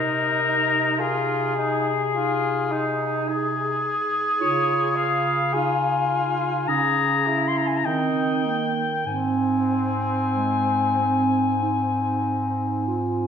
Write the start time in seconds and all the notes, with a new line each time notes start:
Already playing: C3 D#4 A#4
0.99 F4 G#4
1.56 D#4
2.13 D#4 F4
2.71 D#4
3.28 G#4
4.39 C#3 F4 C#5
4.96 F5
5.53 D#4 F4 G#5
6.68 C#3 C#4 G#4 A#5
7.27 E4
7.48 C6
7.57 A#5
7.67 G#5
7.77 A#5
7.85 D#3 C4 D#4 G5
8.45 A#3
9.06 G#2 C4 G#5
10.36 G#3
10.99 C4
11.63 D#4
12.87 F4